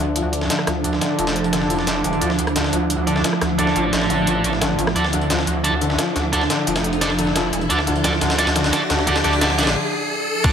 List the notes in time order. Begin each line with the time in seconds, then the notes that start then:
Already playing: F3 D4 E4 A4 E5, riser
0.00 D2 D3
0.16 F3, closed hi-hat
0.33 D4 A4 D5, closed hi-hat
0.41 snare
0.50 D3, snare, closed hi-hat
0.59 cross-stick
0.67 D2 F3, cross-stick, snare, closed hi-hat
0.84 D4 A4 D5, closed hi-hat
0.93 snare
1.01 D3, snare, closed hi-hat
1.19 F1 F3, closed hi-hat
1.27 snare, closed hi-hat
1.36 closed hi-hat
1.44 closed hi-hat
1.53 D3, snare, closed hi-hat
1.61 snare
1.70 F3, closed hi-hat, open hi-hat
1.78 D4 A4 D5, snare
1.87 snare, closed hi-hat
2.04 E1 D3, closed hi-hat
2.13 closed hi-hat
2.21 D2 F3 D4 A4 D5, closed hi-hat
2.30 snare
2.39 closed hi-hat
2.47 cross-stick, closed hi-hat
2.56 D3, snare, closed hi-hat
2.64 snare
2.73 D2 F3, closed hi-hat
2.90 closed hi-hat
3.07 D3 D4 A4 D5, closed hi-hat
3.16 snare
3.24 F3, snare, closed hi-hat
3.33 cross-stick
3.41 D2, cross-stick, snare, closed hi-hat
3.58 D3 D4 A4 D5, closed hi-hat
3.67 snare
3.76 A1 F3, closed hi-hat
3.93 A1, snare, closed hi-hat
4.01 snare
4.10 D3, closed hi-hat, open hi-hat
4.27 F3, closed hi-hat
4.44 closed hi-hat
4.53 snare
4.62 D3, snare, closed hi-hat
4.79 A1 F3, closed hi-hat
4.87 cross-stick, snare
4.96 D2 D4 A4 D5, closed hi-hat
5.04 snare
5.13 D3, closed hi-hat
5.21 closed hi-hat
5.30 F3, snare, closed hi-hat
5.39 snare
5.47 D2, closed hi-hat
5.64 D4 A4 D5, closed hi-hat
5.81 D3, closed hi-hat
5.90 snare
5.99 F3, snare, closed hi-hat
6.16 D2, snare, closed hi-hat
6.33 D4 A4 D5, closed hi-hat
6.41 snare
6.50 D3, snare, closed hi-hat
6.67 F1 F3, closed hi-hat
6.76 snare, closed hi-hat
6.84 closed hi-hat
6.93 closed hi-hat
7.01 D4 A4 D5, snare, closed hi-hat
7.10 snare
7.18 D3, closed hi-hat, open hi-hat
7.27 snare
7.36 F3, snare, closed hi-hat
7.53 E1, closed hi-hat
7.61 closed hi-hat
7.70 D2 D4 A4 D5, closed hi-hat
7.79 snare
7.87 D3, closed hi-hat
7.96 closed hi-hat
8.04 D4 A4 D5, snare, closed hi-hat
8.13 snare
8.21 D2 D3, snare, closed hi-hat
8.30 snare, closed hi-hat
8.38 D4 A4 D5, snare, closed hi-hat
8.47 snare, closed hi-hat
8.56 D3, snare, closed hi-hat
8.64 snare, closed hi-hat
8.73 D4 A4 D5, snare, closed hi-hat
8.90 D2 D3, snare, closed hi-hat
8.99 snare
9.07 D3 D4 A4 D5, closed hi-hat, open hi-hat
9.16 snare, closed hi-hat
9.24 D2 D3 D4 A4 D5, snare, closed hi-hat
9.33 open hi-hat
9.41 D3 D4 A4 D5, snare, closed hi-hat
9.50 snare
9.58 D3 D4 A4 D5, snare, closed hi-hat
9.63 snare, closed hi-hat
9.67 snare, closed hi-hat
10.44 D2 D4 A4 D5, kick, closed hi-hat, crash, impact